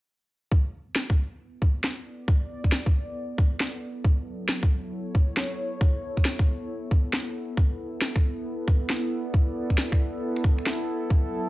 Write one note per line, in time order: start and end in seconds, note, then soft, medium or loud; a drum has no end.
0.52 11.49 B3 medium
0.52 kick loud
0.72 11.49 E4 medium
0.96 snare loud
1.10 kick loud
1.23 11.49 A4 medium
1.62 kick loud
1.83 3.82 D5 medium
1.83 snare loud
2.28 kick loud
2.64 kick medium
2.72 snare loud
2.86 kick loud
3.38 kick loud
3.60 snare loud
3.82 5.59 F#3 medium
4.04 kick loud
4.48 7.57 C#5 medium
4.48 snare loud
4.63 kick loud
5.15 kick loud
5.37 snare loud
5.81 kick loud
6.17 kick medium
6.25 snare loud
6.39 kick loud
6.91 kick loud
7.13 snare loud
7.57 kick loud
8.02 snare loud
8.16 finger snap medium
8.16 kick loud
8.68 kick loud
8.84 10.88 D5 medium
8.90 snare loud
9.34 kick loud
9.70 kick medium
9.78 snare loud
9.92 finger snap medium
9.92 kick loud
10.36 finger snap soft
10.44 kick loud
10.58 finger snap soft
10.66 snare loud
10.88 11.49 F#3 medium
11.10 kick loud